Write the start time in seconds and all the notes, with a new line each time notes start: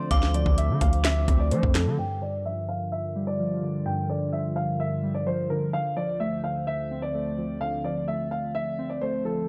Already playing: D3 F3 A3 C4 D4 F4 C5
0.11 D2 D3 F5 D6, kick, closed hi-hat
0.23 snare
0.34 F3 D5, closed hi-hat
0.46 D2, kick
0.58 A3 E5, closed hi-hat
0.69 D3
0.81 D2 F5, kick, closed hi-hat
0.93 closed hi-hat
1.05 E5, finger snap, snare, closed hi-hat
1.28 D2 C4, kick, closed hi-hat
1.40 D5
1.51 F3 A3 C5, closed hi-hat
1.63 F2, kick
1.75 F3 A4, finger snap, snare, closed hi-hat
1.87 D3
1.98 G2 D3 F4 A#4 G5
2.21 D3 D5
2.45 F3 E5
2.69 F5
2.92 E5
3.16 G3
3.27 D5
3.39 F3
3.62 D3
3.86 G2 G5
4.09 D3 D5
4.32 F3 E5
4.56 F5
4.80 E5
5.03 G3
5.14 D5
5.27 F3 C5
5.50 D3 A#4
5.73 D2 D3 C5 F5
5.97 F3 D5
6.20 A3 E5
6.44 F5
6.67 E5
6.91 C4
7.02 D5
7.14 A3
7.38 F3
7.61 D3 D5 F5
7.84 F3 D5
8.08 A3 E5
8.31 F5
8.55 E5
8.79 C4
8.90 D5
9.01 A3 C5
9.25 F3 A4